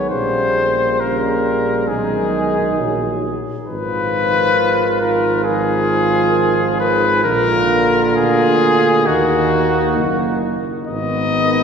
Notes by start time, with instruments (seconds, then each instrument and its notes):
Already playing: tuba B1, flugelhorn B3
0.10 tuba A#1, trombone C#3, french horn G3, flugelhorn A#3, trumpet C5
1.00 trombone C#3, french horn G3, flugelhorn A#3, trumpet A#4
1.88 tuba B1, trombone D#3, french horn G#3, flugelhorn D#4, trumpet G#4
2.79 tuba A#1, french horn F#3
3.68 tuba G#1, trombone D#3, french horn F3, flugelhorn F4, trumpet B4
5.01 trumpet A#4
5.44 trombone D#3, french horn F3, flugelhorn F4, trumpet G#4
6.80 trumpet B4
7.24 tuba A#1, trombone D3, french horn A#3, flugelhorn F4, trumpet A#4
8.16 tuba D2, trumpet G#4
9.05 tuba D#2, trombone D#3, french horn A#3, flugelhorn D#4, trumpet F#4
9.98 tuba F#1
10.87 tuba G#1, trombone D#3, french horn B3, flugelhorn D#4, trumpet D#5